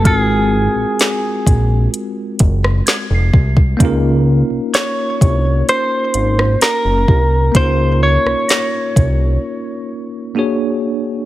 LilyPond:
<<
  \new Staff \with { instrumentName = "Celesta" } { \time 4/4 \key des \major \tempo 4 = 64 f'''4~ f'''16 r4. r16 aes'''16 c''''8.~ | c''''8 r2. r8 | c''''4 bes'''4~ bes'''16 r4. r16 | }
  \new Staff \with { instrumentName = "Clean electric guitar" } { \time 4/4 \key des \major aes'2 r2 | r4 des''4 c''4 bes'4 | c''8 des''2. r8 | }
  \new Staff \with { instrumentName = "Tine electric piano" } { \time 4/4 \key des \major <aes c' f' ges' bes'>1 | <bes des' ees' f' bes'>1 | <bes des' ees' f' bes'>2. <bes d' fis' aes' cis''>4 | }
  \new Staff \with { instrumentName = "Analog synth bass" } { \clef bass \time 4/4 \key des \major aes,,8. bes,,16 r8 bes,,8 r8 ges,,8 r16 f,,16 c,8 | des,8. c,16 r8 c,8 r8 aes,,8 r16 ges,,16 c,8 | des,8. c,16 r8 c,8 r2 | }
  \new DrumStaff \with { instrumentName = "Drums" } \drummode { \time 4/4 <hh bd>4 <hh sn>8 <hh bd>8 hh8 <hh bd>16 ss16 <hh sn>8 bd16 bd16 | <hh bd>4 <hh sn>8 <hh bd>8 hh8 hh16 ss16 <hh sn>8 bd8 | <hh bd>8. ss16 <hh sn>8 <hh bd>8 r4 r4 | }
>>